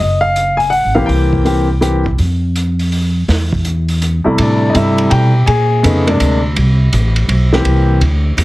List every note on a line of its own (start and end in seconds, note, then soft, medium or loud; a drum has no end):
0.00 0.81 F#1 medium
0.00 0.23 D#5 medium
0.21 0.56 F5 medium
0.36 closed hi-hat soft
0.57 0.70 G#5 medium
0.57 open hi-hat soft
0.70 0.93 F#5 medium
0.70 open hi-hat soft
0.85 0.96 G#1 medium
0.95 1.08 A#1 medium
0.95 1.43 E3 medium
0.95 1.43 A#3 medium
0.95 1.43 C4 medium
0.95 1.43 G4 medium
0.95 1.07 F5 medium
1.06 2.14 C2 medium
1.06 2.00 G5 medium
1.06 open hi-hat soft
1.33 kick soft
1.45 1.67 E3 medium
1.45 1.67 A#3 medium
1.45 1.67 C4 medium
1.45 1.68 G4 medium
1.45 open hi-hat soft
1.81 2.03 E3 medium
1.81 2.03 A#3 soft
1.81 2.03 C4 soft
1.81 2.03 G4 medium
1.81 closed hi-hat soft
2.06 kick medium
2.18 3.24 F2 medium
2.18 open hi-hat soft
2.56 closed hi-hat soft
2.79 open hi-hat soft
2.92 open hi-hat soft
3.28 4.21 E2 medium
3.28 snare soft
3.28 open hi-hat soft
3.53 kick soft
3.65 closed hi-hat soft
3.88 open hi-hat soft
4.02 closed hi-hat soft
4.24 4.71 C3 medium
4.24 4.72 G3 soft
4.24 4.72 A3 medium
4.24 4.72 E4 medium
4.24 muted upright bass stroke soft
4.38 4.74 A2 medium
4.38 4.68 D4 medium
4.38 4.72 D5 medium
4.38 ride medium
4.70 5.29 C3 medium
4.70 4.74 D#5 medium
4.74 5.10 G2 medium
4.74 5.29 G3 medium
4.74 5.30 A3 medium
4.74 5.30 E4 medium
4.74 5.13 E5 medium
4.74 hi-hat pedal soft
4.74 ride medium
4.98 ride soft
5.10 5.46 B2 medium
5.10 5.45 G4 medium
5.10 5.44 G5 medium
5.10 ride medium
5.46 5.82 A#2 medium
5.46 6.03 G#4 medium
5.46 6.03 G#5 medium
5.46 ride medium
5.83 6.19 F2 medium
5.83 6.04 C#3 medium
5.83 6.05 A3 medium
5.83 6.05 B3 medium
5.83 6.05 D#4 medium
5.83 hi-hat pedal medium
5.83 ride medium
6.07 6.39 C3 medium
6.07 6.39 G#3 medium
6.07 6.39 A#3 medium
6.07 6.39 D4 medium
6.07 ride soft
6.20 6.55 D2 medium
6.20 hi-hat pedal medium
6.20 ride medium
6.56 6.92 C2 medium
6.56 ride medium
6.93 7.28 A1 medium
6.93 hi-hat pedal medium
6.93 ride medium
7.16 ride soft
7.28 7.64 B1 medium
7.28 ride medium
7.53 7.99 E3 medium
7.53 7.99 A#3 medium
7.53 8.00 C4 medium
7.53 8.00 G4 medium
7.53 snare soft
7.64 8.00 C2 medium
7.64 ride medium
8.01 8.36 D2 medium
8.01 ride medium
8.37 8.44 E2 medium
8.37 hi-hat pedal medium
8.37 ride medium